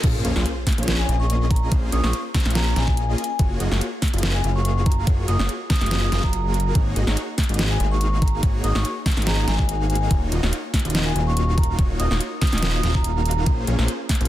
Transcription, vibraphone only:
0, 0, Header, 1, 2, 480
1, 0, Start_track
1, 0, Key_signature, -5, "minor"
1, 0, Tempo, 419580
1, 43, Time_signature, 4, 2, 24, 8
1, 16339, End_track
2, 0, Start_track
2, 0, Title_t, "Vibraphone"
2, 0, Program_c, 0, 11
2, 1131, Note_on_c, 0, 80, 92
2, 1277, Note_off_c, 0, 80, 0
2, 1370, Note_on_c, 0, 85, 89
2, 1700, Note_off_c, 0, 85, 0
2, 1720, Note_on_c, 0, 82, 93
2, 1880, Note_off_c, 0, 82, 0
2, 2202, Note_on_c, 0, 87, 93
2, 2306, Note_off_c, 0, 87, 0
2, 2328, Note_on_c, 0, 85, 94
2, 2475, Note_off_c, 0, 85, 0
2, 2919, Note_on_c, 0, 82, 89
2, 3004, Note_off_c, 0, 82, 0
2, 3049, Note_on_c, 0, 82, 80
2, 3122, Note_off_c, 0, 82, 0
2, 3156, Note_on_c, 0, 80, 90
2, 3529, Note_off_c, 0, 80, 0
2, 3640, Note_on_c, 0, 80, 86
2, 3724, Note_off_c, 0, 80, 0
2, 3771, Note_on_c, 0, 80, 76
2, 3842, Note_off_c, 0, 80, 0
2, 4969, Note_on_c, 0, 80, 91
2, 5116, Note_off_c, 0, 80, 0
2, 5211, Note_on_c, 0, 85, 88
2, 5540, Note_off_c, 0, 85, 0
2, 5561, Note_on_c, 0, 82, 85
2, 5721, Note_off_c, 0, 82, 0
2, 6039, Note_on_c, 0, 87, 91
2, 6144, Note_off_c, 0, 87, 0
2, 6522, Note_on_c, 0, 87, 89
2, 6605, Note_off_c, 0, 87, 0
2, 6655, Note_on_c, 0, 87, 78
2, 6724, Note_off_c, 0, 87, 0
2, 6894, Note_on_c, 0, 87, 89
2, 7107, Note_off_c, 0, 87, 0
2, 7133, Note_on_c, 0, 82, 90
2, 7775, Note_off_c, 0, 82, 0
2, 8811, Note_on_c, 0, 80, 91
2, 8957, Note_off_c, 0, 80, 0
2, 9053, Note_on_c, 0, 85, 90
2, 9381, Note_off_c, 0, 85, 0
2, 9402, Note_on_c, 0, 82, 90
2, 9561, Note_off_c, 0, 82, 0
2, 9883, Note_on_c, 0, 87, 86
2, 9986, Note_off_c, 0, 87, 0
2, 10011, Note_on_c, 0, 85, 93
2, 10157, Note_off_c, 0, 85, 0
2, 10601, Note_on_c, 0, 82, 89
2, 10685, Note_off_c, 0, 82, 0
2, 10731, Note_on_c, 0, 82, 77
2, 10802, Note_off_c, 0, 82, 0
2, 10841, Note_on_c, 0, 80, 89
2, 11211, Note_off_c, 0, 80, 0
2, 11322, Note_on_c, 0, 80, 86
2, 11405, Note_off_c, 0, 80, 0
2, 11451, Note_on_c, 0, 80, 79
2, 11522, Note_off_c, 0, 80, 0
2, 12650, Note_on_c, 0, 80, 92
2, 12797, Note_off_c, 0, 80, 0
2, 12892, Note_on_c, 0, 85, 93
2, 13221, Note_off_c, 0, 85, 0
2, 13243, Note_on_c, 0, 82, 93
2, 13402, Note_off_c, 0, 82, 0
2, 13720, Note_on_c, 0, 87, 90
2, 13825, Note_off_c, 0, 87, 0
2, 14201, Note_on_c, 0, 87, 89
2, 14285, Note_off_c, 0, 87, 0
2, 14331, Note_on_c, 0, 87, 78
2, 14402, Note_off_c, 0, 87, 0
2, 14570, Note_on_c, 0, 87, 90
2, 14785, Note_off_c, 0, 87, 0
2, 14811, Note_on_c, 0, 82, 88
2, 15454, Note_off_c, 0, 82, 0
2, 16339, End_track
0, 0, End_of_file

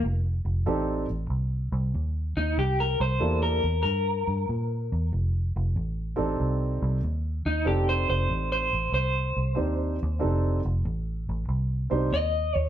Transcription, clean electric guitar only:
0, 0, Header, 1, 2, 480
1, 0, Start_track
1, 0, Tempo, 636267
1, 26, Time_signature, 4, 2, 24, 8
1, 9574, End_track
2, 0, Start_track
2, 0, Title_t, "Clean electric guitar"
2, 0, Program_c, 0, 27
2, 1787, Note_on_c, 0, 63, 94
2, 1938, Note_off_c, 0, 63, 0
2, 1953, Note_on_c, 0, 67, 85
2, 2101, Note_off_c, 0, 67, 0
2, 2114, Note_on_c, 0, 70, 77
2, 2261, Note_off_c, 0, 70, 0
2, 2273, Note_on_c, 0, 72, 78
2, 2575, Note_off_c, 0, 72, 0
2, 2585, Note_on_c, 0, 70, 79
2, 2878, Note_off_c, 0, 70, 0
2, 2887, Note_on_c, 0, 70, 86
2, 3822, Note_off_c, 0, 70, 0
2, 5629, Note_on_c, 0, 63, 94
2, 5779, Note_off_c, 0, 63, 0
2, 5787, Note_on_c, 0, 67, 77
2, 5938, Note_off_c, 0, 67, 0
2, 5952, Note_on_c, 0, 72, 90
2, 6099, Note_off_c, 0, 72, 0
2, 6108, Note_on_c, 0, 72, 80
2, 6414, Note_off_c, 0, 72, 0
2, 6429, Note_on_c, 0, 72, 94
2, 6735, Note_off_c, 0, 72, 0
2, 6745, Note_on_c, 0, 72, 90
2, 8155, Note_off_c, 0, 72, 0
2, 9156, Note_on_c, 0, 75, 107
2, 9473, Note_off_c, 0, 75, 0
2, 9473, Note_on_c, 0, 73, 107
2, 9574, Note_off_c, 0, 73, 0
2, 9574, End_track
0, 0, End_of_file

